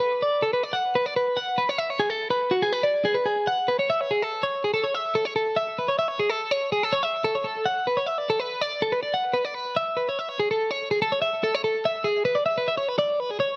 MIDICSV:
0, 0, Header, 1, 2, 480
1, 0, Start_track
1, 0, Key_signature, 3, "major"
1, 0, Tempo, 418410
1, 1580, Time_signature, 5, 2, 24, 8
1, 15561, End_track
2, 0, Start_track
2, 0, Title_t, "Clean electric guitar"
2, 0, Program_c, 0, 27
2, 0, Note_on_c, 0, 71, 68
2, 247, Note_off_c, 0, 71, 0
2, 258, Note_on_c, 0, 74, 55
2, 488, Note_on_c, 0, 69, 69
2, 498, Note_off_c, 0, 74, 0
2, 607, Note_off_c, 0, 69, 0
2, 612, Note_on_c, 0, 71, 67
2, 728, Note_off_c, 0, 71, 0
2, 728, Note_on_c, 0, 74, 60
2, 839, Note_on_c, 0, 78, 64
2, 853, Note_off_c, 0, 74, 0
2, 1089, Note_off_c, 0, 78, 0
2, 1095, Note_on_c, 0, 71, 78
2, 1217, Note_off_c, 0, 71, 0
2, 1217, Note_on_c, 0, 74, 67
2, 1331, Note_off_c, 0, 74, 0
2, 1336, Note_on_c, 0, 71, 66
2, 1569, Note_on_c, 0, 78, 81
2, 1578, Note_off_c, 0, 71, 0
2, 1812, Note_on_c, 0, 71, 66
2, 1815, Note_off_c, 0, 78, 0
2, 1941, Note_off_c, 0, 71, 0
2, 1941, Note_on_c, 0, 73, 57
2, 2048, Note_off_c, 0, 73, 0
2, 2048, Note_on_c, 0, 76, 75
2, 2181, Note_off_c, 0, 76, 0
2, 2181, Note_on_c, 0, 73, 58
2, 2290, Note_on_c, 0, 68, 60
2, 2301, Note_off_c, 0, 73, 0
2, 2407, Note_off_c, 0, 68, 0
2, 2407, Note_on_c, 0, 69, 66
2, 2640, Note_off_c, 0, 69, 0
2, 2644, Note_on_c, 0, 71, 57
2, 2881, Note_on_c, 0, 66, 66
2, 2893, Note_off_c, 0, 71, 0
2, 3010, Note_on_c, 0, 68, 78
2, 3012, Note_off_c, 0, 66, 0
2, 3128, Note_off_c, 0, 68, 0
2, 3128, Note_on_c, 0, 71, 64
2, 3251, Note_on_c, 0, 74, 67
2, 3255, Note_off_c, 0, 71, 0
2, 3497, Note_off_c, 0, 74, 0
2, 3497, Note_on_c, 0, 68, 84
2, 3608, Note_on_c, 0, 71, 61
2, 3620, Note_off_c, 0, 68, 0
2, 3736, Note_off_c, 0, 71, 0
2, 3736, Note_on_c, 0, 68, 63
2, 3980, Note_off_c, 0, 68, 0
2, 3985, Note_on_c, 0, 78, 79
2, 4225, Note_off_c, 0, 78, 0
2, 4225, Note_on_c, 0, 71, 65
2, 4345, Note_off_c, 0, 71, 0
2, 4350, Note_on_c, 0, 73, 61
2, 4468, Note_off_c, 0, 73, 0
2, 4472, Note_on_c, 0, 76, 73
2, 4599, Note_off_c, 0, 76, 0
2, 4599, Note_on_c, 0, 73, 61
2, 4712, Note_off_c, 0, 73, 0
2, 4714, Note_on_c, 0, 68, 63
2, 4846, Note_off_c, 0, 68, 0
2, 4846, Note_on_c, 0, 69, 64
2, 5077, Note_off_c, 0, 69, 0
2, 5085, Note_on_c, 0, 73, 56
2, 5316, Note_off_c, 0, 73, 0
2, 5326, Note_on_c, 0, 68, 64
2, 5429, Note_off_c, 0, 68, 0
2, 5434, Note_on_c, 0, 69, 75
2, 5549, Note_on_c, 0, 73, 61
2, 5550, Note_off_c, 0, 69, 0
2, 5674, Note_off_c, 0, 73, 0
2, 5674, Note_on_c, 0, 76, 69
2, 5910, Note_on_c, 0, 69, 72
2, 5911, Note_off_c, 0, 76, 0
2, 6025, Note_off_c, 0, 69, 0
2, 6025, Note_on_c, 0, 73, 62
2, 6143, Note_off_c, 0, 73, 0
2, 6148, Note_on_c, 0, 69, 65
2, 6384, Note_on_c, 0, 76, 84
2, 6388, Note_off_c, 0, 69, 0
2, 6627, Note_off_c, 0, 76, 0
2, 6638, Note_on_c, 0, 71, 67
2, 6751, Note_on_c, 0, 73, 58
2, 6754, Note_off_c, 0, 71, 0
2, 6864, Note_off_c, 0, 73, 0
2, 6868, Note_on_c, 0, 76, 70
2, 6977, Note_off_c, 0, 76, 0
2, 6977, Note_on_c, 0, 73, 63
2, 7104, Note_off_c, 0, 73, 0
2, 7108, Note_on_c, 0, 68, 61
2, 7223, Note_off_c, 0, 68, 0
2, 7223, Note_on_c, 0, 69, 67
2, 7472, Note_off_c, 0, 69, 0
2, 7472, Note_on_c, 0, 73, 58
2, 7708, Note_off_c, 0, 73, 0
2, 7712, Note_on_c, 0, 68, 64
2, 7839, Note_off_c, 0, 68, 0
2, 7839, Note_on_c, 0, 69, 74
2, 7946, Note_on_c, 0, 73, 61
2, 7955, Note_off_c, 0, 69, 0
2, 8064, Note_off_c, 0, 73, 0
2, 8064, Note_on_c, 0, 76, 72
2, 8308, Note_off_c, 0, 76, 0
2, 8311, Note_on_c, 0, 69, 80
2, 8431, Note_off_c, 0, 69, 0
2, 8434, Note_on_c, 0, 73, 65
2, 8538, Note_on_c, 0, 69, 62
2, 8553, Note_off_c, 0, 73, 0
2, 8783, Note_on_c, 0, 78, 72
2, 8785, Note_off_c, 0, 69, 0
2, 9027, Note_off_c, 0, 78, 0
2, 9030, Note_on_c, 0, 71, 62
2, 9143, Note_on_c, 0, 73, 61
2, 9151, Note_off_c, 0, 71, 0
2, 9252, Note_off_c, 0, 73, 0
2, 9252, Note_on_c, 0, 76, 72
2, 9386, Note_off_c, 0, 76, 0
2, 9386, Note_on_c, 0, 74, 61
2, 9509, Note_off_c, 0, 74, 0
2, 9520, Note_on_c, 0, 69, 66
2, 9632, Note_off_c, 0, 69, 0
2, 9632, Note_on_c, 0, 71, 61
2, 9883, Note_off_c, 0, 71, 0
2, 9883, Note_on_c, 0, 74, 53
2, 10118, Note_off_c, 0, 74, 0
2, 10121, Note_on_c, 0, 69, 66
2, 10237, Note_off_c, 0, 69, 0
2, 10237, Note_on_c, 0, 71, 73
2, 10351, Note_off_c, 0, 71, 0
2, 10356, Note_on_c, 0, 74, 59
2, 10474, Note_off_c, 0, 74, 0
2, 10483, Note_on_c, 0, 78, 67
2, 10710, Note_on_c, 0, 71, 81
2, 10718, Note_off_c, 0, 78, 0
2, 10837, Note_off_c, 0, 71, 0
2, 10837, Note_on_c, 0, 74, 63
2, 10949, Note_off_c, 0, 74, 0
2, 10949, Note_on_c, 0, 71, 61
2, 11190, Note_off_c, 0, 71, 0
2, 11202, Note_on_c, 0, 76, 72
2, 11434, Note_on_c, 0, 71, 67
2, 11437, Note_off_c, 0, 76, 0
2, 11553, Note_off_c, 0, 71, 0
2, 11572, Note_on_c, 0, 73, 60
2, 11688, Note_off_c, 0, 73, 0
2, 11688, Note_on_c, 0, 76, 67
2, 11805, Note_off_c, 0, 76, 0
2, 11805, Note_on_c, 0, 73, 58
2, 11918, Note_off_c, 0, 73, 0
2, 11926, Note_on_c, 0, 68, 60
2, 12038, Note_off_c, 0, 68, 0
2, 12057, Note_on_c, 0, 69, 59
2, 12283, Note_off_c, 0, 69, 0
2, 12283, Note_on_c, 0, 73, 59
2, 12513, Note_off_c, 0, 73, 0
2, 12518, Note_on_c, 0, 68, 60
2, 12633, Note_off_c, 0, 68, 0
2, 12641, Note_on_c, 0, 69, 79
2, 12755, Note_off_c, 0, 69, 0
2, 12758, Note_on_c, 0, 73, 56
2, 12864, Note_off_c, 0, 73, 0
2, 12868, Note_on_c, 0, 76, 67
2, 13108, Note_off_c, 0, 76, 0
2, 13119, Note_on_c, 0, 69, 77
2, 13246, Note_off_c, 0, 69, 0
2, 13246, Note_on_c, 0, 73, 61
2, 13351, Note_off_c, 0, 73, 0
2, 13355, Note_on_c, 0, 69, 60
2, 13590, Note_off_c, 0, 69, 0
2, 13599, Note_on_c, 0, 76, 82
2, 13817, Note_on_c, 0, 68, 76
2, 13832, Note_off_c, 0, 76, 0
2, 14049, Note_off_c, 0, 68, 0
2, 14054, Note_on_c, 0, 71, 84
2, 14168, Note_on_c, 0, 74, 60
2, 14179, Note_off_c, 0, 71, 0
2, 14287, Note_off_c, 0, 74, 0
2, 14291, Note_on_c, 0, 76, 68
2, 14417, Note_off_c, 0, 76, 0
2, 14428, Note_on_c, 0, 71, 69
2, 14545, Note_off_c, 0, 71, 0
2, 14545, Note_on_c, 0, 76, 68
2, 14652, Note_off_c, 0, 76, 0
2, 14656, Note_on_c, 0, 73, 62
2, 14783, Note_off_c, 0, 73, 0
2, 14783, Note_on_c, 0, 71, 73
2, 14893, Note_off_c, 0, 71, 0
2, 14897, Note_on_c, 0, 74, 76
2, 15143, Note_off_c, 0, 74, 0
2, 15143, Note_on_c, 0, 71, 71
2, 15265, Note_off_c, 0, 71, 0
2, 15265, Note_on_c, 0, 68, 72
2, 15367, Note_off_c, 0, 68, 0
2, 15371, Note_on_c, 0, 73, 71
2, 15561, Note_off_c, 0, 73, 0
2, 15561, End_track
0, 0, End_of_file